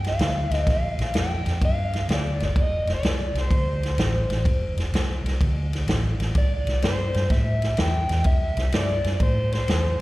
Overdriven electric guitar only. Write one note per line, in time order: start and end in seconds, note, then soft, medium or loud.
0.08 0.55 F5 medium
0.55 0.71 D#5 medium
0.72 1.18 F5 medium
1.19 1.64 G5 medium
1.65 2.12 F5 medium
2.14 2.44 D5 medium
2.45 2.59 D5 medium
2.62 2.92 D#5 medium
2.94 3.40 D5 medium
3.41 5.24 C5 medium
6.38 6.84 D5 medium
6.85 7.28 C5 medium
7.32 7.80 E5 medium
7.81 8.26 G5 medium
8.26 8.74 E5 medium
8.75 9.22 D5 medium
9.23 9.53 C5 medium
9.54 10.01 C5 medium